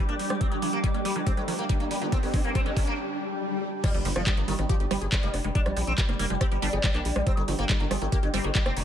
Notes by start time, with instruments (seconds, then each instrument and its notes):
Already playing: ambient pad G3 D4 G4 G5 D6, riser
0.09 synth arpeggio sound A#3, sitar D4, closed hi-hat
0.19 sitar G3, open hi-hat
0.30 sitar G3, synth arpeggio sound G#3, cross-stick, closed hi-hat
0.41 synth arpeggio sound G3, sitar C4, kick, closed hi-hat
0.52 sitar D3, synth arpeggio sound G3, closed hi-hat
0.62 sitar D3, synth arpeggio sound F3, open hi-hat
0.73 sitar A#3, closed hi-hat
0.84 sitar D3, synth arpeggio sound G3, kick, closed hi-hat
0.94 sitar D3, synth arpeggio sound A#3, closed hi-hat
1.05 sitar G3, synth arpeggio sound G3, open hi-hat
1.16 sitar D3, synth arpeggio sound F3
1.27 synth arpeggio sound G3, sitar C4, kick, closed hi-hat
1.37 sitar D3, synth arpeggio sound G3, closed hi-hat
1.48 sitar D3, synth arpeggio sound F3, open hi-hat
1.59 sitar A#3, closed hi-hat
1.69 sitar D3, synth arpeggio sound G3, kick, closed hi-hat
1.80 sitar D3, synth arpeggio sound A#3, closed hi-hat
1.91 synth arpeggio sound G3, sitar G3, open hi-hat
2.02 sitar D3, synth arpeggio sound F3, closed hi-hat
2.12 synth arpeggio sound G3, sitar C4, kick, closed hi-hat
2.23 sitar D3, synth arpeggio sound G3, open hi-hat
2.34 sitar D3, synth arpeggio sound F3, kick, open hi-hat
2.44 sitar A#3, closed hi-hat
2.55 synth arpeggio sound G3, sitar C4, kick, closed hi-hat
2.66 sitar D3, synth arpeggio sound G3, closed hi-hat
2.77 sitar D3, synth arpeggio sound F3, kick, open hi-hat
2.87 sitar A#3, closed hi-hat
2.98 swell
3.84 synth arpeggio sound G3, ambient pad G3 G4, sitar G3, kick, cross-stick, closed hi-hat, crash, impact
3.94 analog synth bass G1, sitar G2, synth arpeggio sound G3, closed hi-hat
4.05 analog synth bass G1, sitar G2, synth arpeggio sound F3, open hi-hat
4.16 analog synth bass G1, sitar F3, cross-stick
4.27 sitar G2, synth arpeggio sound G3, kick, clap, closed hi-hat
4.37 analog synth bass G1, sitar G2, synth arpeggio sound A#3, closed hi-hat
4.48 analog synth bass G1, sitar D#3, synth arpeggio sound G3, open hi-hat
4.59 analog synth bass G#1, sitar G2, synth arpeggio sound F3, cross-stick, closed hi-hat
4.69 sitar F3, synth arpeggio sound G4, kick, closed hi-hat
4.80 analog synth bass G1, sitar G2, synth arpeggio sound G4, closed hi-hat
4.91 analog synth bass G1, synth arpeggio sound G3, sitar G3, cross-stick, open hi-hat
5.02 analog synth bass G1, sitar G2, synth arpeggio sound G#4, closed hi-hat
5.12 sitar G2, synth arpeggio sound G3, kick, clap, closed hi-hat
5.23 analog synth bass F1, sitar G3, synth arpeggio sound A#3, closed hi-hat
5.34 analog synth bass F1, sitar G2, cross-stick, open hi-hat
5.44 analog synth bass F1, sitar G2, synth arpeggio sound G#3, closed hi-hat
5.55 synth arpeggio sound G3, sitar D4, kick, closed hi-hat
5.66 analog synth bass A#1, sitar G3, synth arpeggio sound G3, cross-stick, closed hi-hat
5.77 analog synth bass A#1, synth arpeggio sound F3, sitar G3, open hi-hat
5.87 analog synth bass A#1, sitar C4, closed hi-hat
5.98 sitar G3, synth arpeggio sound G3, kick, clap, closed hi-hat
6.09 analog synth bass F1, sitar G3, synth arpeggio sound A#3, cross-stick, closed hi-hat
6.19 analog synth bass F1, synth arpeggio sound G3, sitar A#3, open hi-hat
6.30 analog synth bass F1, synth arpeggio sound F3, sitar G3
6.41 sitar C4, synth arpeggio sound G4, kick, cross-stick, closed hi-hat
6.52 analog synth bass G1, sitar G3, synth arpeggio sound G4, closed hi-hat
6.62 analog synth bass G1, synth arpeggio sound G3, sitar D4, open hi-hat
6.73 analog synth bass G1, sitar G3, synth arpeggio sound G#4, closed hi-hat
6.84 synth arpeggio sound G3, sitar G3, kick, cross-stick, clap, closed hi-hat
6.94 analog synth bass A#1, synth arpeggio sound A#3, sitar D4, clap, closed hi-hat
7.05 analog synth bass A#1, sitar G3, open hi-hat
7.16 analog synth bass A#1, sitar G3, synth arpeggio sound G#3, cross-stick
7.27 synth arpeggio sound G3, sitar C4, kick, closed hi-hat
7.37 analog synth bass G1, sitar D3, synth arpeggio sound G3, closed hi-hat
7.48 analog synth bass G1, sitar D3, synth arpeggio sound F3, open hi-hat
7.59 analog synth bass G1, sitar A#3, cross-stick, closed hi-hat
7.69 sitar D3, synth arpeggio sound G3, kick, clap, closed hi-hat
7.80 analog synth bass G1, sitar D3, synth arpeggio sound A#3, closed hi-hat
7.91 analog synth bass G1, synth arpeggio sound G3, sitar G#3, cross-stick, open hi-hat
8.02 analog synth bass G#1, sitar D3, synth arpeggio sound F3, closed hi-hat
8.12 sitar A#3, synth arpeggio sound G4, kick, closed hi-hat
8.23 analog synth bass G1, sitar D3, synth arpeggio sound G4, closed hi-hat
8.34 analog synth bass G1, synth arpeggio sound G3, sitar C4, cross-stick, open hi-hat
8.44 analog synth bass G1, sitar D3, synth arpeggio sound G#4, closed hi-hat
8.55 sitar D3, synth arpeggio sound G3, kick, clap, closed hi-hat
8.66 analog synth bass F1, synth arpeggio sound A#3, sitar C4, cross-stick, closed hi-hat
8.77 analog synth bass F1, sitar D3, open hi-hat